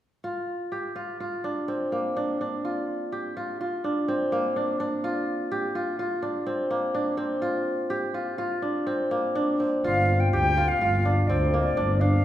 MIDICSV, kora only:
0, 0, Header, 1, 2, 480
1, 0, Start_track
1, 0, Tempo, 480769
1, 237, Time_signature, 5, 2, 24, 8
1, 12228, End_track
2, 0, Start_track
2, 0, Title_t, "Kora"
2, 0, Program_c, 0, 46
2, 239, Note_on_c, 0, 65, 48
2, 717, Note_on_c, 0, 67, 47
2, 950, Note_off_c, 0, 65, 0
2, 954, Note_on_c, 0, 65, 46
2, 1197, Note_off_c, 0, 65, 0
2, 1201, Note_on_c, 0, 65, 47
2, 1439, Note_on_c, 0, 62, 49
2, 1679, Note_on_c, 0, 60, 49
2, 1919, Note_on_c, 0, 58, 47
2, 2127, Note_off_c, 0, 67, 0
2, 2157, Note_off_c, 0, 62, 0
2, 2161, Note_on_c, 0, 62, 53
2, 2400, Note_off_c, 0, 62, 0
2, 2404, Note_on_c, 0, 62, 50
2, 2639, Note_off_c, 0, 65, 0
2, 2643, Note_on_c, 0, 65, 48
2, 3119, Note_on_c, 0, 67, 51
2, 3357, Note_off_c, 0, 65, 0
2, 3361, Note_on_c, 0, 65, 44
2, 3476, Note_off_c, 0, 60, 0
2, 3597, Note_off_c, 0, 65, 0
2, 3601, Note_on_c, 0, 65, 52
2, 3833, Note_off_c, 0, 62, 0
2, 3837, Note_on_c, 0, 62, 49
2, 3845, Note_off_c, 0, 58, 0
2, 4077, Note_on_c, 0, 60, 53
2, 4315, Note_on_c, 0, 58, 53
2, 4529, Note_off_c, 0, 67, 0
2, 4551, Note_off_c, 0, 62, 0
2, 4555, Note_on_c, 0, 62, 53
2, 4788, Note_off_c, 0, 62, 0
2, 4792, Note_on_c, 0, 62, 55
2, 5028, Note_off_c, 0, 65, 0
2, 5032, Note_on_c, 0, 65, 54
2, 5506, Note_on_c, 0, 67, 52
2, 5739, Note_off_c, 0, 65, 0
2, 5743, Note_on_c, 0, 65, 52
2, 5874, Note_off_c, 0, 60, 0
2, 5978, Note_off_c, 0, 65, 0
2, 5982, Note_on_c, 0, 65, 52
2, 6211, Note_off_c, 0, 62, 0
2, 6215, Note_on_c, 0, 62, 45
2, 6241, Note_off_c, 0, 58, 0
2, 6455, Note_on_c, 0, 60, 53
2, 6695, Note_on_c, 0, 58, 49
2, 6916, Note_off_c, 0, 67, 0
2, 6930, Note_off_c, 0, 62, 0
2, 6934, Note_on_c, 0, 62, 56
2, 7158, Note_off_c, 0, 60, 0
2, 7162, Note_on_c, 0, 60, 53
2, 7402, Note_off_c, 0, 65, 0
2, 7406, Note_on_c, 0, 65, 52
2, 7887, Note_on_c, 0, 67, 55
2, 8126, Note_off_c, 0, 65, 0
2, 8130, Note_on_c, 0, 65, 45
2, 8365, Note_off_c, 0, 65, 0
2, 8369, Note_on_c, 0, 65, 57
2, 8605, Note_off_c, 0, 62, 0
2, 8609, Note_on_c, 0, 62, 47
2, 8621, Note_off_c, 0, 58, 0
2, 8848, Note_off_c, 0, 60, 0
2, 8852, Note_on_c, 0, 60, 55
2, 9096, Note_on_c, 0, 58, 53
2, 9297, Note_off_c, 0, 67, 0
2, 9335, Note_off_c, 0, 62, 0
2, 9339, Note_on_c, 0, 62, 58
2, 9578, Note_off_c, 0, 60, 0
2, 9582, Note_on_c, 0, 60, 49
2, 9824, Note_off_c, 0, 65, 0
2, 9828, Note_on_c, 0, 65, 57
2, 10315, Note_on_c, 0, 67, 56
2, 10551, Note_off_c, 0, 65, 0
2, 10555, Note_on_c, 0, 65, 53
2, 10793, Note_off_c, 0, 65, 0
2, 10797, Note_on_c, 0, 65, 54
2, 11016, Note_off_c, 0, 62, 0
2, 11022, Note_off_c, 0, 58, 0
2, 11035, Note_on_c, 0, 62, 51
2, 11273, Note_off_c, 0, 60, 0
2, 11277, Note_on_c, 0, 60, 60
2, 11518, Note_on_c, 0, 58, 49
2, 11725, Note_off_c, 0, 67, 0
2, 11747, Note_off_c, 0, 62, 0
2, 11751, Note_on_c, 0, 62, 56
2, 11985, Note_off_c, 0, 62, 0
2, 11989, Note_on_c, 0, 62, 56
2, 12226, Note_off_c, 0, 65, 0
2, 12228, Note_off_c, 0, 58, 0
2, 12228, Note_off_c, 0, 60, 0
2, 12228, Note_off_c, 0, 62, 0
2, 12228, End_track
0, 0, End_of_file